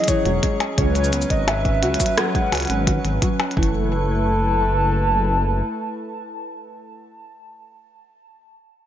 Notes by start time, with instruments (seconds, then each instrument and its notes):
Already playing: analog synth pad F#3 C#4 G#4, synth texture C#5
0.04 closed hi-hat
0.08 felt piano E3, soft synth lead C#5, kick, closed hi-hat, shaker
0.25 detuned saw bass E1, felt piano F#3, closed hi-hat
0.43 felt piano G#3, kick, closed hi-hat
0.60 closed hi-hat, percussion blips
0.78 detuned saw bass C#2, analog synth pad F#3 C#4 B4, felt piano C#4, soft synth lead C#5, kick, closed hi-hat
0.95 closed hi-hat, shaker
1.04 shaker
1.13 felt piano B3, closed hi-hat, shaker
1.22 shaker
1.30 detuned saw bass G#1, soft synth lead D#5, kick, closed hi-hat
1.48 soft synth lead E5, closed hi-hat, percussion blips
1.65 kick, closed hi-hat
1.83 detuned saw bass C#2, felt piano F#4, closed hi-hat
1.94 closed hi-hat
2.00 felt piano F#3, kick, closed hi-hat, shaker
2.06 closed hi-hat
2.17 felt piano F#3, soft synth lead F#5, cross-stick, closed hi-hat
2.35 felt piano G#3, kick, closed hi-hat
2.52 detuned saw bass C#2, felt piano F#4, closed hi-hat, percussion blips
2.55 closed hi-hat
2.57 closed hi-hat
2.60 closed hi-hat
2.62 closed hi-hat
2.65 closed hi-hat
2.67 closed hi-hat
2.70 detuned saw bass G#1, closed hi-hat
2.87 felt piano F#4, kick, closed hi-hat
3.05 detuned saw bass G#1, closed hi-hat
3.22 felt piano F#3, kick, closed hi-hat
3.40 closed hi-hat, percussion blips
3.51 closed hi-hat
3.57 detuned saw bass F#1, felt piano E3, analog synth pad A3 E4 A4 B4, soft synth lead A5, kick
3.63 closed hi-hat